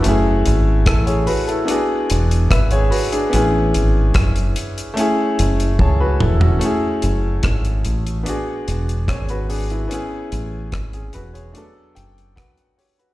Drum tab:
HH |x-x-xxoxx-xxxxox|x-x-xxxxx-xx----|x-x-xxxxx-xxxxox|x-x-xxxxx-xxxxox|
SD |----r-------r---|----r-----------|----r-------r---|----r-------r---|
T1 |----------------|------------o---|----------------|----------------|
T2 |----------------|--------------o-|----------------|----------------|
FT |----------------|---------------o|----------------|----------------|
BD |----o-------o---|----o-------o---|----o-------o---|----o-------o---|